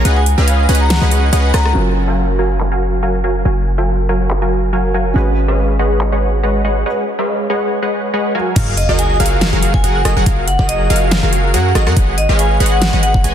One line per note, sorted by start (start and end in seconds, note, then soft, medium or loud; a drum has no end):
0.05 0.35 C#2 loud
0.05 0.23 C#4 medium
0.05 0.23 G#4 medium
0.05 0.23 B4 medium
0.05 0.23 D#5 medium
0.05 0.23 F#5 medium
0.05 closed hi-hat medium
0.17 0.29 G#5 medium
0.26 closed hi-hat medium
0.38 0.67 C#2 medium
0.38 0.66 C#4 medium
0.38 0.66 G#4 medium
0.38 0.66 B4 medium
0.38 0.66 D#5 medium
0.38 0.66 F5 medium
0.48 closed hi-hat medium
0.69 0.99 C#2 loud
0.69 0.99 C#4 loud
0.69 0.99 G#4 medium
0.69 0.99 B4 medium
0.69 0.99 D#5 medium
0.69 0.99 F#5 loud
0.69 closed hi-hat medium
0.75 closed hi-hat medium
0.80 0.93 A#5 medium
0.90 snare loud
0.90 closed hi-hat medium
1.01 1.31 C#2 loud
1.01 1.30 C#4 medium
1.01 1.30 G#4 medium
1.01 1.30 B4 medium
1.01 1.30 D#5 medium
1.01 1.30 F#5 medium
1.11 closed hi-hat medium
1.33 1.52 C#2 loud
1.33 1.52 C#4 loud
1.33 1.52 G#4 medium
1.33 1.52 B4 medium
1.33 1.52 D#5 medium
1.33 1.52 F#5 loud
1.33 closed hi-hat medium
1.54 1.73 C#2 loud
1.54 1.73 C#4 medium
1.54 1.73 G#4 medium
1.54 1.73 B4 medium
1.54 1.73 D#5 medium
1.54 1.73 F#5 loud
1.54 1.73 F#5 medium
1.54 1.75 A#5 medium
1.54 cross-stick medium
1.54 closed hi-hat medium
1.65 cross-stick medium
1.73 3.43 F#1 medium
1.73 5.12 F#3 medium
1.73 1.93 F#3 medium
1.73 5.12 C#4 medium
1.73 5.14 F4 medium
1.73 1.93 F#4 medium
1.73 1.93 A#4 medium
1.73 1.93 F5 medium
1.73 1.93 G#5 medium
1.77 5.14 A#4 medium
2.08 2.37 F#3 medium
2.08 2.37 F#4 medium
2.08 2.37 A#4 medium
2.08 2.37 F5 medium
2.08 2.37 G#5 medium
2.39 2.69 F#3 medium
2.39 2.69 F#4 medium
2.39 2.69 A#4 medium
2.39 2.69 F5 medium
2.39 2.69 G#5 medium
2.60 clap medium
2.72 3.00 F#3 medium
2.72 3.00 F#4 medium
2.72 3.00 A#4 medium
2.72 3.00 F5 medium
2.72 3.00 G#5 medium
3.03 3.22 F#3 medium
3.03 3.22 F#4 medium
3.03 3.22 A#4 medium
3.03 3.22 F5 medium
3.03 3.22 G#5 medium
3.24 3.43 F#3 medium
3.24 3.43 F#4 medium
3.24 3.43 A#4 medium
3.24 3.43 F5 medium
3.24 3.43 G#5 medium
3.45 5.14 F#1 medium
3.45 3.63 F#3 medium
3.45 3.63 F#4 medium
3.45 3.63 A#4 medium
3.45 3.63 F5 medium
3.45 3.63 G#5 medium
3.78 4.07 F#3 medium
3.78 4.07 F#4 medium
3.78 4.07 A#4 medium
3.78 4.07 F5 medium
3.78 4.07 G#5 medium
4.09 4.39 F#3 medium
4.09 4.39 F#4 medium
4.09 4.39 A#4 medium
4.09 4.39 F5 medium
4.09 4.39 G#5 loud
4.31 clap medium
4.42 4.71 F#3 medium
4.42 4.71 F#4 medium
4.42 4.71 A#4 medium
4.42 4.71 F5 medium
4.42 4.71 G#5 medium
4.73 4.92 F#3 medium
4.73 4.92 F#4 medium
4.73 4.92 A#4 medium
4.73 4.92 F5 medium
4.73 4.92 G#5 loud
4.94 5.13 F#3 medium
4.94 5.13 F#4 medium
4.94 5.13 A#4 medium
4.94 5.13 F5 medium
4.94 5.13 G#5 medium
5.14 6.84 G#1 medium
5.14 5.34 G#3 medium
5.14 6.85 C#4 medium
5.14 6.86 F#4 medium
5.14 5.34 G#4 medium
5.14 5.34 B4 medium
5.14 6.87 B4 medium
5.14 5.34 C#5 medium
5.14 5.34 D#5 medium
5.14 5.34 F#5 medium
5.48 5.77 G#3 medium
5.48 5.77 G#4 medium
5.48 5.77 B4 medium
5.48 5.77 C#5 medium
5.48 5.77 D#5 medium
5.48 5.77 F5 medium
5.79 6.09 G#3 medium
5.79 6.09 G#4 medium
5.79 6.09 B4 medium
5.79 6.09 C#5 medium
5.79 6.09 D#5 medium
5.79 6.09 F#5 loud
6.01 clap medium
6.12 6.41 G#3 medium
6.12 6.41 G#4 medium
6.12 6.41 B4 medium
6.12 6.41 C#5 medium
6.12 6.41 D#5 medium
6.12 6.41 F#5 medium
6.43 6.62 G#3 medium
6.43 6.62 G#4 medium
6.43 6.62 B4 medium
6.43 6.62 C#5 medium
6.43 6.62 D#5 medium
6.43 6.62 F#5 medium
6.65 6.83 G#3 medium
6.65 6.84 G#4 medium
6.65 6.84 B4 medium
6.65 6.84 C#5 medium
6.65 6.84 D#5 medium
6.65 6.83 F#5 medium
6.86 7.04 G#3 medium
6.86 7.04 G#4 medium
6.86 7.04 B4 medium
6.86 7.04 C#5 medium
6.86 7.04 D#5 medium
6.86 7.04 F#5 medium
7.19 7.47 G#3 medium
7.19 7.47 G#4 medium
7.19 7.47 B4 medium
7.19 7.47 C#5 medium
7.19 7.47 D#5 medium
7.19 7.47 F5 medium
7.50 7.80 G#3 medium
7.50 7.80 G#4 medium
7.50 7.80 B4 medium
7.50 7.80 C#5 medium
7.50 7.80 D#5 medium
7.50 7.80 F#5 loud
7.82 8.11 G#3 medium
7.82 8.11 G#4 medium
7.82 8.11 B4 medium
7.82 8.11 C#5 medium
7.82 8.11 D#5 medium
7.82 8.11 F#5 medium
8.14 8.32 G#3 medium
8.14 8.32 G#4 medium
8.14 8.33 B4 medium
8.14 8.33 C#5 medium
8.14 8.32 D#5 medium
8.14 8.32 F#5 loud
8.35 8.54 F#3 medium
8.35 8.54 F#4 medium
8.35 8.54 A#4 medium
8.35 8.54 F5 medium
8.35 8.54 G#5 medium
8.56 8.87 F#1 loud
8.56 8.74 F#3 medium
8.56 8.74 F#4 medium
8.56 8.74 G#4 medium
8.56 8.74 A#4 medium
8.56 8.74 F5 medium
8.56 kick loud
8.56 closed hi-hat medium
8.56 crash loud
8.56 sub drop medium
8.77 8.91 D#5 medium
8.77 closed hi-hat medium
8.89 9.18 F#1 medium
8.89 9.18 F#3 medium
8.89 9.18 F#4 medium
8.89 9.18 G#4 medium
8.89 9.18 A#4 medium
8.89 9.18 D#5 medium
8.99 9.12 G#5 medium
8.99 closed hi-hat medium
9.20 9.50 F#1 loud
9.20 9.50 F#3 medium
9.20 9.50 F#4 medium
9.20 9.50 G#4 medium
9.20 9.50 A#4 medium
9.20 9.50 F5 loud
9.20 closed hi-hat medium
9.26 closed hi-hat medium
9.41 snare loud
9.41 closed hi-hat medium
9.53 9.82 F#1 loud
9.53 9.81 F#3 medium
9.53 9.81 F#4 medium
9.53 9.82 G#4 medium
9.53 9.82 A#4 medium
9.53 9.81 F5 medium
9.53 9.82 F5 medium
9.63 closed hi-hat medium
9.74 10.16 G#5 medium
9.74 kick loud
9.84 10.03 F#1 loud
9.84 10.02 F#3 loud
9.84 10.02 F#4 medium
9.84 10.02 G#4 medium
9.84 10.02 A#4 medium
9.84 10.02 F#5 loud
9.84 closed hi-hat medium
10.05 10.14 F#1 medium
10.05 10.14 F#3 medium
10.05 10.14 F#4 medium
10.05 10.14 G#4 medium
10.05 10.14 A#4 medium
10.05 10.14 D#5 medium
10.05 cross-stick medium
10.05 closed hi-hat medium
10.16 10.24 F#1 medium
10.16 10.24 F#3 loud
10.16 10.24 F#4 medium
10.16 10.24 G#4 medium
10.16 10.24 A#4 medium
10.16 10.24 F#5 loud
10.26 10.57 F#1 loud
10.26 10.44 F#3 medium
10.26 10.44 F#4 medium
10.26 10.44 G#4 medium
10.26 10.44 A#4 medium
10.26 10.44 F5 medium
10.26 10.44 F5 loud
10.26 kick loud
10.26 closed hi-hat medium
10.48 10.61 F#5 medium
10.48 closed hi-hat medium
10.59 10.88 F#1 medium
10.59 10.88 F#3 medium
10.59 10.88 F#4 medium
10.59 10.88 G#4 medium
10.59 10.88 A#4 medium
10.59 10.88 D#5 medium
10.59 kick medium
10.69 11.02 D#5 medium
10.69 closed hi-hat medium
10.90 11.21 F#1 loud
10.90 11.20 F#3 medium
10.90 11.20 F#4 medium
10.90 11.20 G#4 medium
10.90 11.20 A#4 medium
10.90 11.20 F5 loud
10.90 closed hi-hat medium
10.96 closed hi-hat medium
11.11 snare loud
11.11 closed hi-hat medium
11.23 11.55 F#1 loud
11.23 11.52 F#3 medium
11.23 11.52 F#4 medium
11.23 11.52 G#4 medium
11.23 11.52 A#4 medium
11.23 11.52 F5 medium
11.33 closed hi-hat medium
11.54 11.73 F#2 loud
11.54 11.72 F#3 loud
11.54 11.72 F#4 medium
11.54 11.72 G#4 medium
11.54 11.72 A#4 medium
11.54 11.72 F#5 loud
11.54 closed hi-hat medium
11.75 11.88 G#1 loud
11.75 11.84 F#3 medium
11.75 11.84 F#4 medium
11.75 11.84 G#4 medium
11.75 11.84 A#4 medium
11.75 11.84 D#5 medium
11.75 cross-stick medium
11.75 closed hi-hat medium
11.87 11.94 F#2 loud
11.87 11.94 F#3 loud
11.87 11.94 F#4 medium
11.87 11.94 G#4 medium
11.87 11.94 A#4 medium
11.87 11.94 F#5 loud
11.87 cross-stick medium
11.96 12.27 G#1 loud
11.96 12.15 G#3 medium
11.96 12.15 B4 medium
11.96 12.15 F#5 medium
11.96 kick loud
11.96 closed hi-hat medium
12.18 12.32 D#5 medium
12.18 closed hi-hat medium
12.29 12.58 G#1 medium
12.29 12.58 G#3 medium
12.29 12.58 G#4 medium
12.29 12.58 B4 medium
12.29 12.58 C#5 medium
12.29 12.58 D#5 medium
12.29 12.58 F5 medium
12.39 12.53 G#5 medium
12.39 closed hi-hat medium
12.60 12.91 G#1 loud
12.60 12.90 G#3 medium
12.60 12.90 G#4 medium
12.60 12.90 B4 medium
12.60 12.90 C#5 medium
12.60 12.90 D#5 medium
12.60 12.90 F#5 loud
12.60 closed hi-hat medium
12.66 closed hi-hat medium
12.72 12.84 F#5 medium
12.82 snare loud
12.82 closed hi-hat medium
12.93 13.22 G#1 medium
12.93 13.22 G#3 medium
12.93 13.22 G#4 medium
12.93 13.22 B4 medium
12.93 13.22 C#5 medium
12.93 13.22 D#5 medium
12.93 13.22 F#5 medium
13.03 13.17 F#5 medium
13.03 closed hi-hat medium
13.14 kick loud
13.24 13.34 G#1 loud
13.24 13.34 G#3 medium
13.24 13.34 G#4 medium
13.24 13.34 B4 medium
13.24 13.34 C#5 medium
13.24 13.34 D#5 medium
13.24 13.34 G#5 loud
13.24 closed hi-hat medium